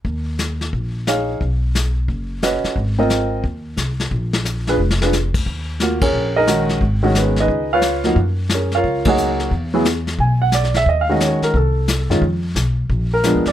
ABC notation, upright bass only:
X:1
M:4/4
L:1/8
Q:"Swing" 1/4=178
K:Bbm
V:1 name="Upright bass" clef=bass
E,,4 B,,,4 | =B,,,4 ^F,,,3 z | A,,,4 E,,2 C,,2 | B,,,4 F,,,3 =D,, |
[K:Ebm] E,,4 B,,,4 | A,,,4 D,,4 | G,,4 D,,4 | =E,,4 =B,,,4 |
E,,3 z =C,,3 G,, | F,,2 C,,2 B,,,2- (3B,,, =D,, _F,, |]